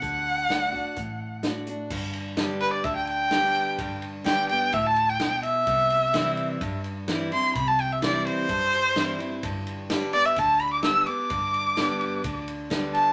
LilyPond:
<<
  \new Staff \with { instrumentName = "Erhu" } { \time 4/4 \key g \major \tempo 4 = 128 fis''2. r4 | r4. b'16 d''16 e''16 g''16 g''4.~ | g''8 r8 g''8 g''8 e''16 a''8 g''8. e''8~ | e''2~ e''8 r4 c'''8 |
b''16 a''16 g''16 e''16 d''8 c''2~ c''8 | r4. d''16 e''16 a''8 b''16 d'''16 e'''8 d'''8~ | d'''2~ d'''8 r4 a''8 | }
  \new Staff \with { instrumentName = "Steel-string acoustic guitar" } { \time 4/4 \key g \major << { r4 <d a d' fis'>8 <d' fis'>8 r4 <d a d' fis'>8 <d' fis'>8 | r4 <d g b g'>4 r4 <d g b g'>4 | r4 <d g b g'>8 <b g'>8 r2 | r4 <e g c' e'>4 r4 <e g c' e'>8 <c' e'>8 |
r4 <e g c' e'>4 r4 <e g c' e'>8 <c' e'>8 | r4 <d g b g'>8 <b g'>8 r4 <d g b g'>8 <b g'>8 | r4 <d g b g'>4 r4 <d g b g'>4 | } \\ { d2 a,2 | g,2 d2 | g,2 a,4 b,4 | c2 g,2 |
c2 g,2 | g,2 d2 | g,2 d2 | } >> }
  \new Staff \with { instrumentName = "Fingered electric bass" } { \clef bass \time 4/4 \key g \major d,2 a,,2 | g,,2 d,2 | g,,2 d,2 | c,2 g,2 |
c,2 g,2 | g,,2 d,2 | g,,2 d,2 | }
  \new DrumStaff \with { instrumentName = "Drums" } \drummode { \time 4/4 <hh bd>4 <hh sn>8 bd8 <hh bd>4 <hh sn>8 hh8 | <cymc bd>8 cymr8 <cymr sn>8 cymr8 <bd cymr>8 cymr8 <cymr sn>8 cymr8 | <bd cymr>8 cymr8 <cymr sn>8 cymr8 <bd cymr>8 cymr8 <cymr sn>8 cymr8 | <bd cymr>8 cymr8 <cymr sn>8 cymr8 <bd cymr>8 cymr8 <cymr sn>8 cymr8 |
<bd cymr>8 cymr8 <cymr sn>8 cymr8 <bd cymr>8 cymr8 <cymr sn>8 cymr8 | <bd cymr>8 cymr8 <cymr sn>8 cymr8 <bd cymr>8 cymr8 <cymr sn>8 cymr8 | <bd cymr>8 cymr8 <cymr sn>8 cymr8 <bd cymr>8 cymr8 <cymr sn>8 cymr8 | }
>>